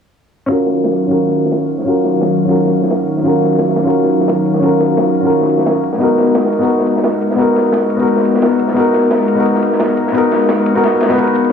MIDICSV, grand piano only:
0, 0, Header, 1, 2, 480
1, 0, Start_track
1, 0, Key_signature, -6, "minor"
1, 0, Tempo, 344828
1, 683, Time_signature, 4, 2, 24, 8
1, 16040, End_track
2, 0, Start_track
2, 0, Title_t, "Grand piano"
2, 0, Program_c, 0, 0
2, 643, Note_on_c, 0, 61, 75
2, 669, Note_on_c, 0, 65, 73
2, 696, Note_on_c, 0, 66, 72
2, 723, Note_on_c, 0, 70, 85
2, 965, Control_c, 0, 64, 127
2, 1466, Note_off_c, 0, 61, 0
2, 1487, Note_on_c, 0, 61, 71
2, 1493, Note_off_c, 0, 65, 0
2, 1506, Note_off_c, 0, 66, 0
2, 1513, Note_on_c, 0, 65, 60
2, 1520, Note_off_c, 0, 70, 0
2, 1540, Note_on_c, 0, 66, 63
2, 1567, Note_on_c, 0, 70, 80
2, 2541, Note_off_c, 0, 61, 0
2, 2562, Note_on_c, 0, 61, 76
2, 2567, Note_off_c, 0, 65, 0
2, 2581, Note_off_c, 0, 66, 0
2, 2588, Note_on_c, 0, 65, 74
2, 2595, Note_off_c, 0, 70, 0
2, 2615, Note_on_c, 0, 66, 71
2, 2641, Note_on_c, 0, 70, 83
2, 3389, Note_off_c, 0, 61, 0
2, 3410, Note_on_c, 0, 61, 72
2, 3412, Note_off_c, 0, 65, 0
2, 3426, Note_off_c, 0, 66, 0
2, 3438, Note_on_c, 0, 65, 65
2, 3439, Note_off_c, 0, 70, 0
2, 3464, Note_on_c, 0, 66, 65
2, 3491, Note_on_c, 0, 70, 77
2, 4460, Note_off_c, 0, 61, 0
2, 4481, Note_on_c, 0, 61, 80
2, 4487, Note_off_c, 0, 65, 0
2, 4503, Note_off_c, 0, 66, 0
2, 4508, Note_on_c, 0, 65, 73
2, 4517, Note_off_c, 0, 70, 0
2, 4533, Note_on_c, 0, 66, 72
2, 4560, Note_on_c, 0, 70, 86
2, 5306, Note_off_c, 0, 61, 0
2, 5327, Note_on_c, 0, 61, 73
2, 5331, Note_off_c, 0, 65, 0
2, 5345, Note_off_c, 0, 66, 0
2, 5352, Note_on_c, 0, 65, 67
2, 5358, Note_off_c, 0, 70, 0
2, 5380, Note_on_c, 0, 66, 65
2, 5407, Note_on_c, 0, 70, 79
2, 6377, Note_off_c, 0, 61, 0
2, 6398, Note_on_c, 0, 61, 80
2, 6404, Note_off_c, 0, 65, 0
2, 6421, Note_off_c, 0, 66, 0
2, 6425, Note_on_c, 0, 65, 71
2, 6434, Note_off_c, 0, 70, 0
2, 6450, Note_on_c, 0, 66, 71
2, 6477, Note_on_c, 0, 70, 85
2, 7226, Note_off_c, 0, 61, 0
2, 7247, Note_on_c, 0, 61, 69
2, 7251, Note_off_c, 0, 65, 0
2, 7263, Note_off_c, 0, 66, 0
2, 7274, Note_on_c, 0, 65, 65
2, 7277, Note_off_c, 0, 70, 0
2, 7300, Note_on_c, 0, 66, 64
2, 7326, Note_on_c, 0, 70, 80
2, 8088, Note_off_c, 0, 61, 0
2, 8102, Note_off_c, 0, 65, 0
2, 8115, Note_off_c, 0, 66, 0
2, 8128, Note_off_c, 0, 70, 0
2, 8144, Control_c, 0, 64, 0
2, 8319, Note_on_c, 0, 59, 75
2, 8345, Note_on_c, 0, 63, 72
2, 8372, Note_on_c, 0, 66, 71
2, 8391, Control_c, 0, 64, 127
2, 8397, Note_on_c, 0, 70, 87
2, 9144, Note_off_c, 0, 59, 0
2, 9165, Note_on_c, 0, 59, 74
2, 9171, Note_off_c, 0, 63, 0
2, 9184, Note_off_c, 0, 66, 0
2, 9193, Note_on_c, 0, 63, 63
2, 9197, Note_off_c, 0, 70, 0
2, 9218, Note_on_c, 0, 66, 64
2, 9246, Note_on_c, 0, 70, 74
2, 10219, Note_off_c, 0, 59, 0
2, 10240, Note_on_c, 0, 59, 81
2, 10247, Note_off_c, 0, 63, 0
2, 10260, Note_off_c, 0, 66, 0
2, 10268, Note_on_c, 0, 63, 73
2, 10274, Note_off_c, 0, 70, 0
2, 10294, Note_on_c, 0, 66, 70
2, 10319, Note_on_c, 0, 70, 83
2, 11067, Note_off_c, 0, 59, 0
2, 11088, Note_on_c, 0, 59, 72
2, 11092, Note_off_c, 0, 63, 0
2, 11105, Note_off_c, 0, 66, 0
2, 11114, Note_on_c, 0, 63, 65
2, 11118, Note_off_c, 0, 70, 0
2, 11140, Note_on_c, 0, 66, 65
2, 11168, Note_on_c, 0, 70, 80
2, 12141, Note_off_c, 0, 59, 0
2, 12162, Note_on_c, 0, 59, 80
2, 12168, Note_off_c, 0, 63, 0
2, 12181, Note_off_c, 0, 66, 0
2, 12188, Note_on_c, 0, 63, 73
2, 12195, Note_off_c, 0, 70, 0
2, 12215, Note_on_c, 0, 66, 74
2, 12243, Note_on_c, 0, 70, 91
2, 12989, Note_off_c, 0, 59, 0
2, 13010, Note_on_c, 0, 59, 73
2, 13012, Note_off_c, 0, 63, 0
2, 13026, Note_off_c, 0, 66, 0
2, 13036, Note_on_c, 0, 63, 65
2, 13040, Note_off_c, 0, 70, 0
2, 13062, Note_on_c, 0, 66, 66
2, 13089, Note_on_c, 0, 70, 78
2, 14061, Note_off_c, 0, 59, 0
2, 14082, Note_on_c, 0, 59, 80
2, 14086, Note_off_c, 0, 63, 0
2, 14102, Note_off_c, 0, 66, 0
2, 14107, Note_on_c, 0, 63, 76
2, 14115, Note_off_c, 0, 70, 0
2, 14135, Note_on_c, 0, 66, 71
2, 14159, Note_on_c, 0, 70, 88
2, 14919, Note_off_c, 0, 59, 0
2, 14932, Note_off_c, 0, 63, 0
2, 14946, Note_off_c, 0, 66, 0
2, 14949, Note_on_c, 0, 59, 70
2, 14958, Note_off_c, 0, 70, 0
2, 14962, Note_on_c, 0, 63, 65
2, 14976, Note_on_c, 0, 66, 67
2, 14989, Note_on_c, 0, 70, 78
2, 15407, Note_off_c, 0, 59, 0
2, 15419, Note_off_c, 0, 63, 0
2, 15428, Note_off_c, 0, 66, 0
2, 15428, Note_on_c, 0, 59, 79
2, 15434, Note_off_c, 0, 70, 0
2, 15440, Note_on_c, 0, 63, 69
2, 15454, Note_on_c, 0, 66, 67
2, 15467, Note_on_c, 0, 71, 88
2, 15520, Note_off_c, 0, 59, 0
2, 15531, Note_off_c, 0, 63, 0
2, 15538, Note_off_c, 0, 66, 0
2, 15541, Note_on_c, 0, 59, 64
2, 15544, Note_off_c, 0, 71, 0
2, 15553, Note_on_c, 0, 63, 60
2, 15568, Note_on_c, 0, 66, 63
2, 15580, Note_on_c, 0, 70, 75
2, 16005, Note_off_c, 0, 59, 0
2, 16011, Note_off_c, 0, 63, 0
2, 16019, Note_off_c, 0, 66, 0
2, 16024, Note_off_c, 0, 70, 0
2, 16040, End_track
0, 0, End_of_file